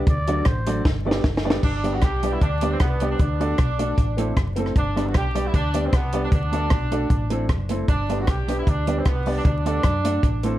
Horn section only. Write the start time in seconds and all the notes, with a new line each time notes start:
1.64 D4
1.93 F#4
2.03 G4
2.33 E4
2.42 D4
2.72 C4
2.81 B3
3.11 D4
3.21 D4
4.77 D4
5.07 F#4
5.17 G4
5.47 E4
5.55 D4
5.85 C4
5.94 B3
6.24 D4
6.33 D4
7.89 D4
8.19 F#4
8.29 G4
8.59 E4
8.69 D4
8.98 C4
9.07 B3
9.37 D4
9.47 D4